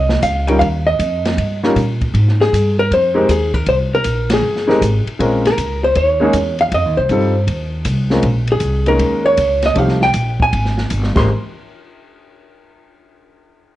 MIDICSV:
0, 0, Header, 1, 6, 480
1, 0, Start_track
1, 0, Key_signature, -4, "major"
1, 0, Tempo, 381437
1, 778, Time_signature, 4, 2, 24, 8
1, 17316, End_track
2, 0, Start_track
2, 0, Title_t, "Hollow-body jazz guitar"
2, 0, Program_c, 0, 26
2, 0, Note_on_c, 0, 75, 96
2, 261, Note_off_c, 0, 75, 0
2, 287, Note_on_c, 0, 77, 83
2, 595, Note_off_c, 0, 77, 0
2, 595, Note_on_c, 0, 79, 99
2, 738, Note_off_c, 0, 79, 0
2, 743, Note_on_c, 0, 77, 93
2, 834, Note_off_c, 0, 77, 0
2, 1088, Note_on_c, 0, 75, 82
2, 2002, Note_off_c, 0, 75, 0
2, 3038, Note_on_c, 0, 68, 96
2, 3511, Note_off_c, 0, 68, 0
2, 3516, Note_on_c, 0, 70, 105
2, 3674, Note_off_c, 0, 70, 0
2, 3696, Note_on_c, 0, 72, 104
2, 4167, Note_on_c, 0, 68, 66
2, 4171, Note_off_c, 0, 72, 0
2, 4459, Note_off_c, 0, 68, 0
2, 4459, Note_on_c, 0, 70, 94
2, 4620, Note_off_c, 0, 70, 0
2, 4641, Note_on_c, 0, 72, 91
2, 4724, Note_off_c, 0, 72, 0
2, 4967, Note_on_c, 0, 70, 91
2, 5444, Note_off_c, 0, 70, 0
2, 5456, Note_on_c, 0, 68, 84
2, 6343, Note_off_c, 0, 68, 0
2, 6882, Note_on_c, 0, 70, 72
2, 7347, Note_off_c, 0, 70, 0
2, 7352, Note_on_c, 0, 72, 94
2, 7504, Note_off_c, 0, 72, 0
2, 7509, Note_on_c, 0, 73, 81
2, 8247, Note_off_c, 0, 73, 0
2, 8312, Note_on_c, 0, 77, 106
2, 8375, Note_off_c, 0, 77, 0
2, 8484, Note_on_c, 0, 75, 99
2, 8772, Note_on_c, 0, 72, 87
2, 8794, Note_off_c, 0, 75, 0
2, 9679, Note_off_c, 0, 72, 0
2, 10719, Note_on_c, 0, 68, 80
2, 11150, Note_off_c, 0, 68, 0
2, 11178, Note_on_c, 0, 70, 86
2, 11645, Note_off_c, 0, 70, 0
2, 11650, Note_on_c, 0, 73, 95
2, 12142, Note_off_c, 0, 73, 0
2, 12155, Note_on_c, 0, 75, 95
2, 12311, Note_off_c, 0, 75, 0
2, 12311, Note_on_c, 0, 77, 94
2, 12617, Note_off_c, 0, 77, 0
2, 12622, Note_on_c, 0, 79, 97
2, 13108, Note_off_c, 0, 79, 0
2, 13118, Note_on_c, 0, 80, 99
2, 14013, Note_off_c, 0, 80, 0
2, 14058, Note_on_c, 0, 84, 89
2, 14205, Note_off_c, 0, 84, 0
2, 17316, End_track
3, 0, Start_track
3, 0, Title_t, "Grand piano"
3, 0, Program_c, 1, 0
3, 592, Note_on_c, 1, 55, 71
3, 595, Note_on_c, 1, 61, 61
3, 602, Note_on_c, 1, 63, 66
3, 604, Note_on_c, 1, 65, 58
3, 618, Note_on_c, 1, 70, 77
3, 750, Note_off_c, 1, 55, 0
3, 751, Note_off_c, 1, 61, 0
3, 755, Note_off_c, 1, 63, 0
3, 756, Note_off_c, 1, 65, 0
3, 763, Note_off_c, 1, 70, 0
3, 2055, Note_on_c, 1, 61, 75
3, 2059, Note_on_c, 1, 55, 79
3, 2064, Note_on_c, 1, 63, 69
3, 2072, Note_on_c, 1, 65, 70
3, 2078, Note_on_c, 1, 70, 81
3, 2202, Note_off_c, 1, 61, 0
3, 2205, Note_off_c, 1, 55, 0
3, 2207, Note_off_c, 1, 63, 0
3, 2211, Note_off_c, 1, 65, 0
3, 2214, Note_off_c, 1, 70, 0
3, 3957, Note_on_c, 1, 56, 76
3, 3960, Note_on_c, 1, 60, 58
3, 3964, Note_on_c, 1, 63, 62
3, 3975, Note_on_c, 1, 70, 80
3, 3978, Note_on_c, 1, 67, 70
3, 4113, Note_off_c, 1, 56, 0
3, 4114, Note_off_c, 1, 60, 0
3, 4117, Note_off_c, 1, 63, 0
3, 4122, Note_off_c, 1, 70, 0
3, 4124, Note_off_c, 1, 67, 0
3, 5880, Note_on_c, 1, 56, 74
3, 5884, Note_on_c, 1, 60, 65
3, 5884, Note_on_c, 1, 63, 73
3, 5898, Note_on_c, 1, 70, 87
3, 5904, Note_on_c, 1, 67, 67
3, 6033, Note_off_c, 1, 56, 0
3, 6035, Note_off_c, 1, 60, 0
3, 6035, Note_off_c, 1, 63, 0
3, 6042, Note_off_c, 1, 70, 0
3, 6045, Note_off_c, 1, 67, 0
3, 6532, Note_on_c, 1, 60, 59
3, 6535, Note_on_c, 1, 56, 69
3, 6540, Note_on_c, 1, 61, 62
3, 6541, Note_on_c, 1, 65, 58
3, 6552, Note_on_c, 1, 70, 73
3, 6819, Note_off_c, 1, 60, 0
3, 6820, Note_off_c, 1, 56, 0
3, 6823, Note_off_c, 1, 61, 0
3, 6823, Note_off_c, 1, 65, 0
3, 6829, Note_off_c, 1, 70, 0
3, 7798, Note_on_c, 1, 56, 76
3, 7813, Note_on_c, 1, 58, 76
3, 7814, Note_on_c, 1, 61, 71
3, 7829, Note_on_c, 1, 63, 75
3, 7830, Note_on_c, 1, 68, 84
3, 7950, Note_off_c, 1, 56, 0
3, 7958, Note_off_c, 1, 58, 0
3, 7958, Note_off_c, 1, 61, 0
3, 7966, Note_off_c, 1, 63, 0
3, 7966, Note_off_c, 1, 68, 0
3, 8943, Note_on_c, 1, 55, 65
3, 8944, Note_on_c, 1, 60, 61
3, 8944, Note_on_c, 1, 63, 56
3, 8953, Note_on_c, 1, 65, 58
3, 8956, Note_on_c, 1, 69, 75
3, 9222, Note_off_c, 1, 55, 0
3, 9222, Note_off_c, 1, 60, 0
3, 9223, Note_off_c, 1, 63, 0
3, 9227, Note_off_c, 1, 65, 0
3, 9229, Note_off_c, 1, 69, 0
3, 10199, Note_on_c, 1, 60, 56
3, 10204, Note_on_c, 1, 56, 64
3, 10213, Note_on_c, 1, 61, 55
3, 10215, Note_on_c, 1, 65, 54
3, 10224, Note_on_c, 1, 70, 68
3, 10349, Note_off_c, 1, 60, 0
3, 10352, Note_off_c, 1, 56, 0
3, 10356, Note_off_c, 1, 61, 0
3, 10357, Note_off_c, 1, 65, 0
3, 10362, Note_off_c, 1, 70, 0
3, 11151, Note_on_c, 1, 56, 65
3, 11162, Note_on_c, 1, 58, 55
3, 11169, Note_on_c, 1, 61, 63
3, 11175, Note_on_c, 1, 63, 54
3, 11175, Note_on_c, 1, 70, 71
3, 11769, Note_off_c, 1, 56, 0
3, 11774, Note_off_c, 1, 58, 0
3, 11777, Note_off_c, 1, 61, 0
3, 11781, Note_off_c, 1, 63, 0
3, 11781, Note_off_c, 1, 70, 0
3, 12268, Note_on_c, 1, 53, 53
3, 12279, Note_on_c, 1, 60, 51
3, 12281, Note_on_c, 1, 57, 49
3, 12297, Note_on_c, 1, 67, 61
3, 12298, Note_on_c, 1, 63, 53
3, 12564, Note_off_c, 1, 53, 0
3, 12569, Note_off_c, 1, 60, 0
3, 12571, Note_off_c, 1, 57, 0
3, 12579, Note_off_c, 1, 63, 0
3, 12579, Note_off_c, 1, 67, 0
3, 14039, Note_on_c, 1, 56, 50
3, 14044, Note_on_c, 1, 67, 51
3, 14046, Note_on_c, 1, 60, 55
3, 14048, Note_on_c, 1, 70, 61
3, 14190, Note_off_c, 1, 56, 0
3, 14192, Note_off_c, 1, 67, 0
3, 14193, Note_off_c, 1, 60, 0
3, 14194, Note_off_c, 1, 70, 0
3, 17316, End_track
4, 0, Start_track
4, 0, Title_t, "Upright bass"
4, 0, Program_c, 2, 32
4, 0, Note_on_c, 2, 36, 81
4, 275, Note_off_c, 2, 36, 0
4, 280, Note_on_c, 2, 37, 96
4, 755, Note_off_c, 2, 37, 0
4, 769, Note_on_c, 2, 39, 83
4, 1240, Note_off_c, 2, 39, 0
4, 1247, Note_on_c, 2, 41, 89
4, 1719, Note_off_c, 2, 41, 0
4, 1732, Note_on_c, 2, 43, 71
4, 2201, Note_off_c, 2, 43, 0
4, 2211, Note_on_c, 2, 46, 86
4, 2681, Note_off_c, 2, 46, 0
4, 2689, Note_on_c, 2, 44, 90
4, 3160, Note_off_c, 2, 44, 0
4, 3181, Note_on_c, 2, 43, 93
4, 3646, Note_off_c, 2, 43, 0
4, 3663, Note_on_c, 2, 41, 79
4, 4126, Note_off_c, 2, 41, 0
4, 4138, Note_on_c, 2, 39, 80
4, 4604, Note_off_c, 2, 39, 0
4, 4616, Note_on_c, 2, 36, 80
4, 5082, Note_off_c, 2, 36, 0
4, 5089, Note_on_c, 2, 34, 75
4, 5558, Note_off_c, 2, 34, 0
4, 5569, Note_on_c, 2, 31, 73
4, 6037, Note_off_c, 2, 31, 0
4, 6060, Note_on_c, 2, 32, 81
4, 6353, Note_off_c, 2, 32, 0
4, 6537, Note_on_c, 2, 34, 87
4, 7001, Note_off_c, 2, 34, 0
4, 7015, Note_on_c, 2, 37, 74
4, 7479, Note_off_c, 2, 37, 0
4, 7495, Note_on_c, 2, 39, 82
4, 7959, Note_off_c, 2, 39, 0
4, 7967, Note_on_c, 2, 40, 89
4, 8434, Note_off_c, 2, 40, 0
4, 8450, Note_on_c, 2, 41, 88
4, 8622, Note_off_c, 2, 41, 0
4, 8622, Note_on_c, 2, 39, 55
4, 8770, Note_off_c, 2, 39, 0
4, 8777, Note_on_c, 2, 36, 71
4, 8915, Note_off_c, 2, 36, 0
4, 8923, Note_on_c, 2, 43, 90
4, 9392, Note_off_c, 2, 43, 0
4, 9397, Note_on_c, 2, 39, 80
4, 9869, Note_off_c, 2, 39, 0
4, 9878, Note_on_c, 2, 36, 92
4, 10349, Note_off_c, 2, 36, 0
4, 10356, Note_on_c, 2, 34, 90
4, 10820, Note_off_c, 2, 34, 0
4, 10828, Note_on_c, 2, 36, 83
4, 11304, Note_off_c, 2, 36, 0
4, 11321, Note_on_c, 2, 39, 77
4, 11791, Note_off_c, 2, 39, 0
4, 11802, Note_on_c, 2, 37, 90
4, 12271, Note_off_c, 2, 37, 0
4, 12279, Note_on_c, 2, 36, 84
4, 12750, Note_off_c, 2, 36, 0
4, 12762, Note_on_c, 2, 34, 81
4, 13231, Note_off_c, 2, 34, 0
4, 13248, Note_on_c, 2, 32, 80
4, 13715, Note_off_c, 2, 32, 0
4, 13727, Note_on_c, 2, 31, 88
4, 14036, Note_off_c, 2, 31, 0
4, 14045, Note_on_c, 2, 32, 95
4, 14198, Note_off_c, 2, 32, 0
4, 17316, End_track
5, 0, Start_track
5, 0, Title_t, "Muted upright bass strokes"
5, 6365, Note_on_c, 9, 29, 42
5, 6490, Note_off_c, 9, 29, 0
5, 17316, End_track
6, 0, Start_track
6, 0, Title_t, "Drums"
6, 118, Note_on_c, 9, 38, 60
6, 243, Note_off_c, 9, 38, 0
6, 283, Note_on_c, 9, 44, 58
6, 283, Note_on_c, 9, 51, 66
6, 286, Note_on_c, 9, 36, 23
6, 408, Note_off_c, 9, 44, 0
6, 408, Note_off_c, 9, 51, 0
6, 412, Note_off_c, 9, 36, 0
6, 605, Note_on_c, 9, 51, 45
6, 731, Note_off_c, 9, 51, 0
6, 768, Note_on_c, 9, 36, 17
6, 769, Note_on_c, 9, 51, 57
6, 894, Note_off_c, 9, 36, 0
6, 895, Note_off_c, 9, 51, 0
6, 1250, Note_on_c, 9, 36, 20
6, 1251, Note_on_c, 9, 44, 52
6, 1251, Note_on_c, 9, 51, 63
6, 1376, Note_off_c, 9, 36, 0
6, 1377, Note_off_c, 9, 44, 0
6, 1377, Note_off_c, 9, 51, 0
6, 1576, Note_on_c, 9, 51, 51
6, 1580, Note_on_c, 9, 38, 63
6, 1702, Note_off_c, 9, 51, 0
6, 1706, Note_off_c, 9, 38, 0
6, 1733, Note_on_c, 9, 36, 22
6, 1737, Note_on_c, 9, 51, 61
6, 1859, Note_off_c, 9, 36, 0
6, 1863, Note_off_c, 9, 51, 0
6, 2058, Note_on_c, 9, 38, 56
6, 2184, Note_off_c, 9, 38, 0
6, 2216, Note_on_c, 9, 36, 20
6, 2217, Note_on_c, 9, 44, 60
6, 2217, Note_on_c, 9, 51, 67
6, 2342, Note_off_c, 9, 36, 0
6, 2343, Note_off_c, 9, 44, 0
6, 2343, Note_off_c, 9, 51, 0
6, 2535, Note_on_c, 9, 36, 44
6, 2535, Note_on_c, 9, 51, 43
6, 2660, Note_off_c, 9, 51, 0
6, 2661, Note_off_c, 9, 36, 0
6, 2698, Note_on_c, 9, 36, 21
6, 2699, Note_on_c, 9, 51, 59
6, 2823, Note_off_c, 9, 36, 0
6, 2825, Note_off_c, 9, 51, 0
6, 2872, Note_on_c, 9, 38, 28
6, 2998, Note_off_c, 9, 38, 0
6, 3029, Note_on_c, 9, 38, 45
6, 3155, Note_off_c, 9, 38, 0
6, 3185, Note_on_c, 9, 36, 19
6, 3195, Note_on_c, 9, 44, 61
6, 3195, Note_on_c, 9, 51, 69
6, 3311, Note_off_c, 9, 36, 0
6, 3321, Note_off_c, 9, 44, 0
6, 3321, Note_off_c, 9, 51, 0
6, 3666, Note_on_c, 9, 36, 25
6, 3672, Note_on_c, 9, 51, 66
6, 3792, Note_off_c, 9, 36, 0
6, 3798, Note_off_c, 9, 51, 0
6, 4142, Note_on_c, 9, 36, 22
6, 4144, Note_on_c, 9, 44, 70
6, 4144, Note_on_c, 9, 51, 76
6, 4268, Note_off_c, 9, 36, 0
6, 4270, Note_off_c, 9, 44, 0
6, 4270, Note_off_c, 9, 51, 0
6, 4457, Note_on_c, 9, 36, 58
6, 4459, Note_on_c, 9, 51, 43
6, 4582, Note_off_c, 9, 36, 0
6, 4585, Note_off_c, 9, 51, 0
6, 4612, Note_on_c, 9, 51, 58
6, 4615, Note_on_c, 9, 36, 22
6, 4737, Note_off_c, 9, 51, 0
6, 4741, Note_off_c, 9, 36, 0
6, 5087, Note_on_c, 9, 44, 57
6, 5087, Note_on_c, 9, 51, 68
6, 5094, Note_on_c, 9, 36, 22
6, 5212, Note_off_c, 9, 44, 0
6, 5212, Note_off_c, 9, 51, 0
6, 5220, Note_off_c, 9, 36, 0
6, 5407, Note_on_c, 9, 51, 76
6, 5411, Note_on_c, 9, 38, 81
6, 5533, Note_off_c, 9, 51, 0
6, 5537, Note_off_c, 9, 38, 0
6, 5743, Note_on_c, 9, 38, 30
6, 5869, Note_off_c, 9, 38, 0
6, 5909, Note_on_c, 9, 38, 40
6, 6035, Note_off_c, 9, 38, 0
6, 6059, Note_on_c, 9, 36, 22
6, 6066, Note_on_c, 9, 44, 66
6, 6066, Note_on_c, 9, 51, 74
6, 6185, Note_off_c, 9, 36, 0
6, 6192, Note_off_c, 9, 44, 0
6, 6192, Note_off_c, 9, 51, 0
6, 6385, Note_on_c, 9, 51, 42
6, 6511, Note_off_c, 9, 51, 0
6, 6540, Note_on_c, 9, 36, 25
6, 6548, Note_on_c, 9, 51, 55
6, 6666, Note_off_c, 9, 36, 0
6, 6674, Note_off_c, 9, 51, 0
6, 6863, Note_on_c, 9, 51, 46
6, 6867, Note_on_c, 9, 38, 41
6, 6989, Note_off_c, 9, 51, 0
6, 6993, Note_off_c, 9, 38, 0
6, 7017, Note_on_c, 9, 36, 19
6, 7018, Note_on_c, 9, 44, 49
6, 7018, Note_on_c, 9, 51, 65
6, 7143, Note_off_c, 9, 36, 0
6, 7144, Note_off_c, 9, 44, 0
6, 7144, Note_off_c, 9, 51, 0
6, 7490, Note_on_c, 9, 51, 59
6, 7495, Note_on_c, 9, 36, 23
6, 7616, Note_off_c, 9, 51, 0
6, 7620, Note_off_c, 9, 36, 0
6, 7967, Note_on_c, 9, 44, 72
6, 7967, Note_on_c, 9, 51, 73
6, 7973, Note_on_c, 9, 36, 23
6, 8092, Note_off_c, 9, 44, 0
6, 8092, Note_off_c, 9, 51, 0
6, 8099, Note_off_c, 9, 36, 0
6, 8286, Note_on_c, 9, 51, 40
6, 8412, Note_off_c, 9, 51, 0
6, 8450, Note_on_c, 9, 51, 56
6, 8451, Note_on_c, 9, 36, 25
6, 8576, Note_off_c, 9, 36, 0
6, 8576, Note_off_c, 9, 51, 0
6, 8920, Note_on_c, 9, 44, 56
6, 8920, Note_on_c, 9, 51, 61
6, 8926, Note_on_c, 9, 36, 19
6, 9046, Note_off_c, 9, 44, 0
6, 9046, Note_off_c, 9, 51, 0
6, 9052, Note_off_c, 9, 36, 0
6, 9405, Note_on_c, 9, 36, 21
6, 9405, Note_on_c, 9, 51, 68
6, 9531, Note_off_c, 9, 36, 0
6, 9531, Note_off_c, 9, 51, 0
6, 9874, Note_on_c, 9, 44, 60
6, 9874, Note_on_c, 9, 51, 78
6, 9880, Note_on_c, 9, 36, 24
6, 10000, Note_off_c, 9, 44, 0
6, 10000, Note_off_c, 9, 51, 0
6, 10006, Note_off_c, 9, 36, 0
6, 10195, Note_on_c, 9, 38, 47
6, 10321, Note_off_c, 9, 38, 0
6, 10351, Note_on_c, 9, 51, 61
6, 10356, Note_on_c, 9, 36, 21
6, 10477, Note_off_c, 9, 51, 0
6, 10482, Note_off_c, 9, 36, 0
6, 10664, Note_on_c, 9, 51, 47
6, 10790, Note_off_c, 9, 51, 0
6, 10821, Note_on_c, 9, 44, 59
6, 10821, Note_on_c, 9, 51, 59
6, 10834, Note_on_c, 9, 36, 20
6, 10947, Note_off_c, 9, 44, 0
6, 10947, Note_off_c, 9, 51, 0
6, 10960, Note_off_c, 9, 36, 0
6, 11152, Note_on_c, 9, 51, 45
6, 11278, Note_off_c, 9, 51, 0
6, 11318, Note_on_c, 9, 51, 62
6, 11322, Note_on_c, 9, 36, 20
6, 11444, Note_off_c, 9, 51, 0
6, 11448, Note_off_c, 9, 36, 0
6, 11798, Note_on_c, 9, 44, 51
6, 11798, Note_on_c, 9, 51, 69
6, 11803, Note_on_c, 9, 36, 23
6, 11924, Note_off_c, 9, 44, 0
6, 11924, Note_off_c, 9, 51, 0
6, 11929, Note_off_c, 9, 36, 0
6, 12114, Note_on_c, 9, 51, 47
6, 12118, Note_on_c, 9, 38, 39
6, 12240, Note_off_c, 9, 51, 0
6, 12244, Note_off_c, 9, 38, 0
6, 12277, Note_on_c, 9, 51, 52
6, 12285, Note_on_c, 9, 36, 23
6, 12403, Note_off_c, 9, 51, 0
6, 12411, Note_off_c, 9, 36, 0
6, 12442, Note_on_c, 9, 38, 29
6, 12568, Note_off_c, 9, 38, 0
6, 12604, Note_on_c, 9, 38, 41
6, 12730, Note_off_c, 9, 38, 0
6, 12756, Note_on_c, 9, 44, 49
6, 12756, Note_on_c, 9, 51, 62
6, 12767, Note_on_c, 9, 36, 19
6, 12882, Note_off_c, 9, 44, 0
6, 12882, Note_off_c, 9, 51, 0
6, 12892, Note_off_c, 9, 36, 0
6, 13085, Note_on_c, 9, 36, 61
6, 13211, Note_off_c, 9, 36, 0
6, 13248, Note_on_c, 9, 51, 69
6, 13249, Note_on_c, 9, 36, 19
6, 13374, Note_off_c, 9, 51, 0
6, 13375, Note_off_c, 9, 36, 0
6, 13407, Note_on_c, 9, 38, 32
6, 13533, Note_off_c, 9, 38, 0
6, 13562, Note_on_c, 9, 38, 41
6, 13687, Note_off_c, 9, 38, 0
6, 13718, Note_on_c, 9, 44, 58
6, 13718, Note_on_c, 9, 51, 70
6, 13727, Note_on_c, 9, 36, 22
6, 13843, Note_off_c, 9, 44, 0
6, 13843, Note_off_c, 9, 51, 0
6, 13853, Note_off_c, 9, 36, 0
6, 13885, Note_on_c, 9, 38, 31
6, 14010, Note_off_c, 9, 38, 0
6, 14040, Note_on_c, 9, 38, 72
6, 14040, Note_on_c, 9, 49, 67
6, 14044, Note_on_c, 9, 36, 80
6, 14165, Note_off_c, 9, 38, 0
6, 14165, Note_off_c, 9, 49, 0
6, 14170, Note_off_c, 9, 36, 0
6, 17316, End_track
0, 0, End_of_file